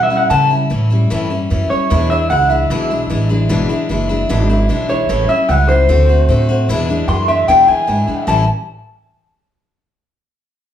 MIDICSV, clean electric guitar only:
0, 0, Header, 1, 2, 480
1, 0, Start_track
1, 0, Tempo, 398142
1, 368, Time_signature, 4, 2, 24, 8
1, 12943, End_track
2, 0, Start_track
2, 0, Title_t, "Clean electric guitar"
2, 0, Program_c, 0, 27
2, 38, Note_on_c, 0, 76, 104
2, 198, Note_off_c, 0, 76, 0
2, 207, Note_on_c, 0, 78, 85
2, 359, Note_off_c, 0, 78, 0
2, 363, Note_on_c, 0, 81, 115
2, 599, Note_off_c, 0, 81, 0
2, 2051, Note_on_c, 0, 73, 97
2, 2519, Note_off_c, 0, 73, 0
2, 2532, Note_on_c, 0, 76, 101
2, 2766, Note_off_c, 0, 76, 0
2, 2773, Note_on_c, 0, 78, 92
2, 3011, Note_off_c, 0, 78, 0
2, 3011, Note_on_c, 0, 76, 100
2, 4412, Note_off_c, 0, 76, 0
2, 5901, Note_on_c, 0, 73, 96
2, 6366, Note_off_c, 0, 73, 0
2, 6376, Note_on_c, 0, 76, 93
2, 6614, Note_off_c, 0, 76, 0
2, 6614, Note_on_c, 0, 78, 87
2, 6849, Note_off_c, 0, 78, 0
2, 6855, Note_on_c, 0, 72, 110
2, 8020, Note_off_c, 0, 72, 0
2, 8546, Note_on_c, 0, 84, 97
2, 8774, Note_off_c, 0, 84, 0
2, 8779, Note_on_c, 0, 76, 100
2, 9010, Note_off_c, 0, 76, 0
2, 9021, Note_on_c, 0, 79, 97
2, 9251, Note_off_c, 0, 79, 0
2, 9261, Note_on_c, 0, 80, 84
2, 9955, Note_off_c, 0, 80, 0
2, 9982, Note_on_c, 0, 81, 92
2, 10201, Note_off_c, 0, 81, 0
2, 12943, End_track
0, 0, End_of_file